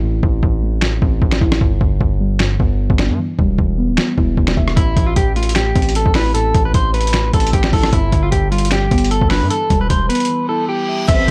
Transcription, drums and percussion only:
0.23 kick
0.43 kick
0.81 finger snap, snare
1.02 kick
1.22 kick
1.31 finger snap, snare
1.41 kick
1.52 cross-stick, snare
1.61 kick
1.81 kick
2.01 kick
2.39 finger snap, snare
2.60 kick
2.90 kick
2.98 finger snap, snare
3.39 kick
3.58 kick
3.97 finger snap, snare
4.18 kick
4.37 kick
4.47 finger snap, snare
4.57 kick
4.68 cross-stick
4.77 kick, closed hi-hat
4.97 kick, closed hi-hat
5.16 kick, closed hi-hat
5.36 closed hi-hat
5.43 closed hi-hat
5.49 closed hi-hat
5.55 finger snap, snare, closed hi-hat
5.76 kick, closed hi-hat
5.82 closed hi-hat
5.89 closed hi-hat
5.95 closed hi-hat
6.06 kick
6.14 finger snap, snare, open hi-hat
6.35 closed hi-hat
6.54 kick, closed hi-hat
6.74 kick, closed hi-hat
6.94 closed hi-hat
7.01 closed hi-hat
7.07 closed hi-hat
7.13 finger snap, snare, closed hi-hat
7.33 kick, closed hi-hat
7.40 closed hi-hat
7.47 closed hi-hat
7.53 kick, closed hi-hat
7.63 finger snap, snare
7.73 kick, open hi-hat
7.83 cross-stick, snare
7.93 kick, closed hi-hat
8.12 kick, closed hi-hat
8.32 kick, closed hi-hat
8.52 closed hi-hat
8.58 closed hi-hat
8.65 closed hi-hat
8.71 finger snap, snare, closed hi-hat
8.91 kick, closed hi-hat
8.98 closed hi-hat
9.04 closed hi-hat
9.11 closed hi-hat
9.21 kick
9.30 finger snap, snare, open hi-hat
9.51 closed hi-hat
9.70 kick, closed hi-hat
9.90 kick, closed hi-hat
10.10 closed hi-hat
10.15 closed hi-hat
10.20 closed hi-hat
10.25 closed hi-hat
11.08 kick, closed hi-hat, crash

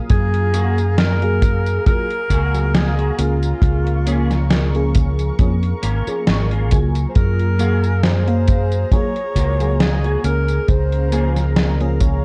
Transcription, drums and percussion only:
0.10 kick, closed hi-hat, tambourine
0.34 closed hi-hat
0.54 closed hi-hat, tambourine
0.78 closed hi-hat, tambourine
0.98 snare, closed hi-hat, tambourine
1.22 closed hi-hat
1.42 kick, closed hi-hat, tambourine
1.66 closed hi-hat, tambourine
1.86 kick, closed hi-hat, tambourine
2.10 closed hi-hat
2.30 kick, closed hi-hat, tambourine
2.54 closed hi-hat, tambourine
2.74 snare, closed hi-hat, tambourine
2.99 closed hi-hat
3.19 closed hi-hat, tambourine
3.43 closed hi-hat, tambourine
3.62 kick, closed hi-hat, tambourine
3.87 closed hi-hat
4.07 closed hi-hat, tambourine
4.31 snare, closed hi-hat, tambourine
4.51 snare, closed hi-hat, tambourine
4.75 closed hi-hat
4.95 kick, closed hi-hat, tambourine
5.19 closed hi-hat, tambourine
5.39 kick, closed hi-hat, tambourine
5.63 closed hi-hat
5.83 closed hi-hat, tambourine
6.07 closed hi-hat, tambourine
6.27 snare, closed hi-hat, tambourine
6.51 closed hi-hat
6.71 kick, closed hi-hat, tambourine
6.95 closed hi-hat, tambourine
7.15 kick, closed hi-hat, tambourine
7.39 closed hi-hat
7.59 closed hi-hat, tambourine
7.84 closed hi-hat, tambourine
8.03 snare, closed hi-hat, tambourine
8.28 closed hi-hat
8.48 kick, closed hi-hat, tambourine
8.72 closed hi-hat, tambourine
8.92 kick, closed hi-hat, tambourine
9.16 closed hi-hat
9.36 kick, closed hi-hat, tambourine
9.60 closed hi-hat, tambourine
9.80 snare, closed hi-hat, tambourine
10.04 closed hi-hat
10.24 closed hi-hat, tambourine
10.48 closed hi-hat, tambourine
10.68 kick, closed hi-hat, tambourine
10.92 closed hi-hat
11.12 closed hi-hat, tambourine
11.37 snare, closed hi-hat, tambourine
11.57 snare, closed hi-hat, tambourine
11.81 closed hi-hat
12.00 kick, closed hi-hat, tambourine

